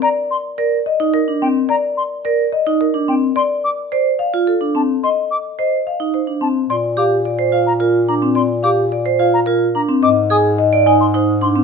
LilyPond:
<<
  \new Staff \with { instrumentName = "Flute" } { \time 3/4 \key f \mixolydian \tempo 4 = 108 bes''16 r16 c'''16 r4. r16 g''16 r16 | bes''16 r16 c'''16 r4. r16 g''16 r16 | c'''16 r16 d'''16 r4. r16 a''16 r16 | c'''16 r16 d'''16 r4. r16 a''16 r16 |
\key bes \mixolydian c'''16 r16 d'''16 r4 bes''16 r8 bes''16 r16 | c'''16 r16 d'''16 r4 bes''16 r8 bes''16 r16 | d'''16 r16 ees'''16 r4 c'''16 r8 c'''16 r16 | }
  \new Staff \with { instrumentName = "Marimba" } { \time 3/4 \key f \mixolydian d''16 r8. d''16 r16 ees''16 r16 bes'16 r8. | d''16 r8. d''16 r16 ees''16 r16 bes'16 r8. | d''16 r8. d''16 r16 f''16 r16 a'16 r8. | ees''16 r8. ees''16 r16 f''16 r16 c''16 r8. |
\key bes \mixolydian d''16 r16 f''16 r16 d''16 r16 f''16 r16 bes'16 r8. | d''16 r16 f''16 r16 d''16 r16 f''16 r16 bes'16 r8. | ees''16 r16 aes''16 r16 ees''16 r16 aes''16 r16 c''16 r8. | }
  \new Staff \with { instrumentName = "Vibraphone" } { \time 3/4 \key f \mixolydian r4 bes'16 r8 ees'16 r16 d'16 c'16 r16 | r4 bes'16 r8 ees'16 r16 d'16 c'16 r16 | r4 c''16 r8 f'16 r16 d'16 c'16 r16 | r4 c''16 r8 ees'16 r16 d'16 c'16 r16 |
\key bes \mixolydian r8 g'16 r8 c''16 f'16 r16 f'16 r16 d'16 c'16 | r8 g'16 r8 c''16 f'16 r16 f'16 r16 d'16 c'16 | r8 aes'16 r8 d''16 ees'16 r16 ees'16 r16 d'16 c'16 | }
  \new Staff \with { instrumentName = "Bass clarinet" } { \clef bass \time 3/4 \key f \mixolydian r2. | r2. | r2. | r2. |
\key bes \mixolydian bes,2.~ | bes,2. | aes,2. | }
>>